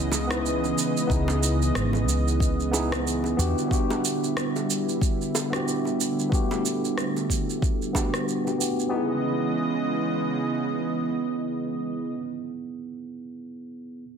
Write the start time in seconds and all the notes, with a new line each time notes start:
Already playing: C#2 C#3 E3 G#3 B3 D#4 E4 G#4 D#5
0.12 high bongo, shaker
0.27 B3 D#4 E4, cross-stick
0.31 B4, shaker
0.46 shaker
0.64 high bongo, shaker
0.78 shaker
0.97 shaker
1.07 C#2 B3 D#4 E4, kick, shaker
1.12 G#4
1.28 high bongo, shaker
1.43 shaker
1.62 shaker
1.75 G#1, cross-stick, shaker
1.93 high bongo, shaker
2.08 C#2, shaker
2.28 shaker
2.40 kick, shaker
2.60 shaker
2.71 B3 D#4 E4 G#4, high bongo, shaker
2.92 cross-stick, shaker
3.07 shaker
3.24 high bongo, shaker
3.37 E2 D3 G3 B3 D4 E4 F#4 G4, shaker
3.58 shaker
3.68 B3 D4 F#4, kick
3.73 G4, shaker
3.90 high bongo, shaker
4.05 shaker
4.24 shaker
4.37 cross-stick, shaker
4.56 high bongo, shaker
4.70 shaker
4.89 shaker
5.01 kick, shaker
5.21 shaker
5.35 high bongo, shaker
5.50 B3 D4 F#4, cross-stick, shaker
5.56 G4
5.68 shaker
5.85 high bongo, shaker
5.99 A3, shaker
6.19 shaker
6.29 B3 D4 F#4, kick
6.34 G4, shaker
6.51 high bongo, shaker
6.66 shaker
6.84 shaker
6.98 cross-stick, shaker
7.16 high bongo, shaker
7.30 kick, shaker
7.50 shaker
7.62 kick, shaker
7.82 shaker
7.93 B3 D4 F#4 G4, kick, high bongo, shaker
8.14 cross-stick, shaker
8.29 shaker
8.45 B3 D4 F#4 G4, high bongo, shaker
8.59 B3 D4 F#4 G4, shaker
8.80 shaker
8.88 C#3 E3 G#3 B3 D#4
8.92 B3 E4 D#5
8.96 G#4